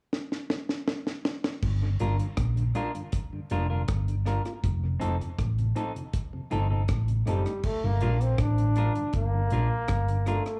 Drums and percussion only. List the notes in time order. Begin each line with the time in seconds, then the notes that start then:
0.13 snare
0.32 snare
0.50 snare
0.69 snare
0.88 snare
1.07 snare
1.25 snare
1.44 snare
1.62 kick, crash
2.00 closed hi-hat
2.20 closed hi-hat
2.37 kick, cross-stick, closed hi-hat
2.57 closed hi-hat
2.75 closed hi-hat
2.95 closed hi-hat
3.12 kick, closed hi-hat
3.50 closed hi-hat
3.88 kick, cross-stick, closed hi-hat
4.08 closed hi-hat
4.26 cross-stick, closed hi-hat
4.45 cross-stick, closed hi-hat
4.64 kick, closed hi-hat
5.01 closed hi-hat
5.21 closed hi-hat
5.39 kick, cross-stick, closed hi-hat
5.58 closed hi-hat
5.76 closed hi-hat
5.96 closed hi-hat
6.13 kick, closed hi-hat
6.51 closed hi-hat
6.88 kick, cross-stick, closed hi-hat
7.08 closed hi-hat
7.27 closed hi-hat
7.46 cross-stick, closed hi-hat
7.63 kick, crash
8.01 closed hi-hat
8.21 closed hi-hat
8.38 kick, cross-stick, closed hi-hat
8.58 closed hi-hat
8.76 closed hi-hat
8.95 closed hi-hat
9.13 kick, closed hi-hat
9.50 closed hi-hat
9.88 kick, cross-stick, closed hi-hat
10.08 closed hi-hat
10.26 cross-stick, closed hi-hat
10.46 cross-stick, closed hi-hat